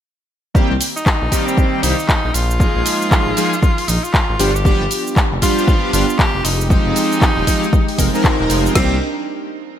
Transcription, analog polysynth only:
0.54 D#3 G3 A#3 C4 G4
1.31 D#3 G3 A#3 C4 G4
1.83 D#3 G3 A#3 C4 G4
2.59 F3 G#3 A#3 D#4 G#4
3.36 F3 G#3 A#3 D#4 G#4
4.39 F3 G3 B3 D4 G4
4.65 F3 G3 B3 D4 G4
5.42 F3 G3 B3 D4 G4
5.93 F3 G3 B3 D4 G4
6.69 F3 G#3 C4 D#4 G4
7.47 F3 G#3 C4 D#4 G4
7.98 F3 G#3 C4 D#4 A#4
8.13 F3 G#3 C4 D#4 A#4
8.74 D#3 G3 A#3 C4 G4

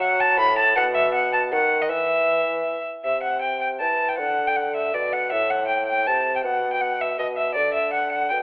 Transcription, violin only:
0.01 F#5
0.20 A5
0.40 B5
0.59 A5
0.76 F#5
0.95 E5
1.14 F#5
1.33 A5
1.53 F#5
1.82 D#5
1.91 E5
3.05 E5
3.23 F#5
3.42 G5
3.61 G5
3.80 A5
4.09 G5
4.18 F#5
4.47 G5
4.56 F#5
4.76 E5
4.94 D5
5.13 F#5
5.32 E5
5.50 F#5
5.68 G5
5.86 G5
6.07 A5
6.36 G5
6.44 F#5
6.73 G5
6.81 F#5
7.01 E5
7.19 D#5
7.37 E5
7.55 D5
7.74 E5
7.93 F#5
8.12 F#5
8.30 G5

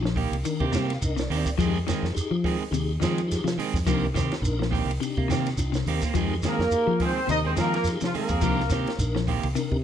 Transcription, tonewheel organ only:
0.44 D4 D#4 A#4
0.71 G5
0.88 F5
1.01 D4 D#4 A#4 D#5
1.16 D5
1.57 D#4 G4 G#4
2.14 D#4 G4 G#4
2.71 D#4 G4 G#4
3.27 D#4 G4 G#4
3.85 D4 D#4 A#4
4.42 D4 D#4 A#4
5.00 D4 D#4 G4
5.57 D4 D#4 F4
6.15 D#4 G4 G#4
6.72 D#4 G4 G#4
7.29 D#4 G4 A#4
7.86 D#4 G4 G#4
8.43 D4 D#4 A#4
8.99 D4 D#4 A#4
9.55 D4 D#4 A#4

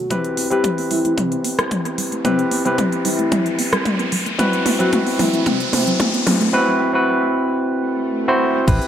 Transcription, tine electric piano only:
0.10 C4 E4 G4 B4
0.50 C4 E4 G4 B4
2.24 C4 E4 G4 B4
2.65 C4 E4 G4 B4
4.38 C4 E4 F#4 B4
4.79 C4 E4 F#4 B4
6.53 C4 E4 F#4 B4
6.93 C4 E4 F#4 B4
8.28 C4 E4 F#4 C5
8.67 C4 E4 G4 B4

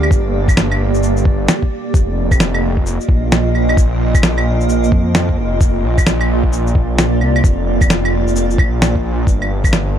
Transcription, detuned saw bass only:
0.11 G1
0.80 G1
0.94 G1
1.94 F1
3.09 A#1
4.92 F2
5.38 F1
5.60 F1
5.84 A#1
7.21 C2
7.44 F1
8.12 F1
8.27 F1
8.58 A#1
9.27 G1

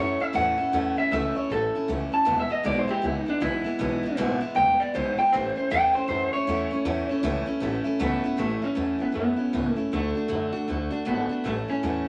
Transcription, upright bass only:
Already playing: F#2
0.21 muted upright bass stroke
0.36 E2
0.59 muted upright bass stroke
0.73 E2
0.98 muted upright bass stroke
1.12 C#2
1.36 muted upright bass stroke
1.51 A1
1.75 muted upright bass stroke
1.89 C#2
2.13 muted upright bass stroke
2.26 E1
2.50 muted upright bass stroke
2.65 B1
2.88 muted upright bass stroke
3.03 C#2
3.28 muted upright bass stroke
3.42 B1
3.66 muted upright bass stroke
3.81 B1
4.05 muted upright bass stroke
4.19 G#1
4.44 muted upright bass stroke
4.57 E1
4.82 muted upright bass stroke
4.95 B1
5.20 muted upright bass stroke
5.34 A1
5.57 muted upright bass stroke
5.72 E2
5.97 muted upright bass stroke
6.10 F#2
6.33 muted upright bass stroke
6.48 E2
6.72 muted upright bass stroke
6.85 E2
7.09 muted upright bass stroke
7.23 C#2
7.48 muted upright bass stroke
7.62 A1
7.86 muted upright bass stroke
8.00 C#2
8.24 muted upright bass stroke
8.39 A1
8.62 muted upright bass stroke
8.77 E2
9.01 muted upright bass stroke
9.16 F#2
9.40 muted upright bass stroke
9.54 C#2
9.79 muted upright bass stroke
9.93 D2
10.18 muted upright bass stroke
10.31 F#2
10.56 muted upright bass stroke
10.70 D2
10.93 muted upright bass stroke
11.08 G#1
11.31 muted upright bass stroke
11.45 A1
11.69 muted upright bass stroke
11.83 E2

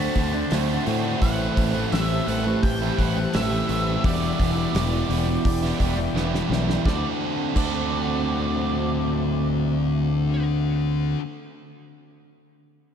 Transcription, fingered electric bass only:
0.16 D2
0.52 D2
0.87 A2
1.21 A1
1.57 A1
1.93 A1
2.27 A1
2.63 A1
2.98 A1
3.35 A1
3.69 A1
4.04 E1
4.39 E1
4.75 E1
5.09 E1
5.45 E1
5.80 E1
6.14 E1
6.50 B1
6.85 D2
7.56 D2

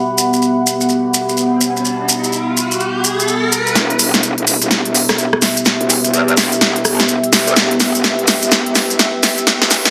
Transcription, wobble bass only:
3.75 E1
4.14 E1
4.38 E1
4.47 E1
4.62 E1
4.85 E1
5.18 E1
5.81 F#1
6.13 E2
6.37 E1
6.85 G1
7.09 E1
7.47 D2
7.56 E1
7.95 E1
8.19 E1
8.28 E1
8.43 E1
8.66 E1
8.99 E1
9.62 F#1

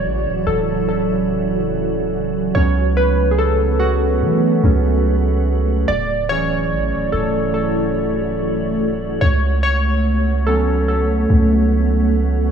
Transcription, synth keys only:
Already playing: C#3 E3 F#3 G#3 C#5 D5
0.47 A4
0.89 A4
2.55 F#3 B3 C#4 C#5
2.97 B4
3.31 G#4
3.38 A4
3.80 F#4
4.64 F#3 B3 C#4
5.88 D5
6.29 E3 F#3 C#4 G#4 C#5
7.12 A4
7.54 A4
9.21 C#5
9.63 C#5
10.47 F#3 B3 C#4 A4
10.88 A4

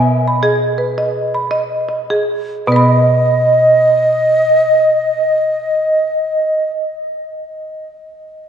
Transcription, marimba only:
Already playing: B2 G#5
0.28 B5
0.43 G#4 D#5
0.78 B4
0.98 D#5
1.35 B5
1.51 D#5
1.89 D#5
2.10 G#4
2.67 B2 B3
2.72 B4
2.76 B5

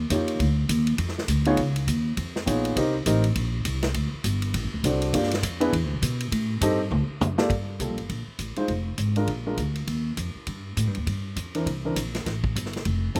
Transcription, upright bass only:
0.10 F2
0.39 D2
0.69 D#2
0.98 F2
1.28 D2
1.57 C#2
1.87 D#2
2.17 F2
2.47 A#1
2.76 C2
3.06 A1
3.36 A#1
3.65 C2
3.94 D2
4.14 muted upright bass stroke
4.24 G1
4.54 A1
4.64 F#1
4.74 D1
4.84 C2
5.13 G2
5.43 F2
5.73 E2
5.83 D2
5.93 B1
6.02 B2
6.32 A2
6.61 G2
6.91 D2
7.09 muted upright bass stroke
7.21 F#2
7.50 G2
7.79 C2
7.89 A#1
7.99 G1
8.10 A#1
8.27 muted upright bass stroke
8.39 A1
8.57 muted upright bass stroke
8.68 F1
8.98 G#1
9.27 A#1
9.58 D2
9.87 D#2
10.17 F2
10.35 muted upright bass stroke
10.47 G2
10.77 A2
10.87 G2
10.97 D#2
11.07 G2
11.36 F2
11.66 C2
11.96 A#1
12.26 A1
12.56 G1
12.86 F1
13.15 G1

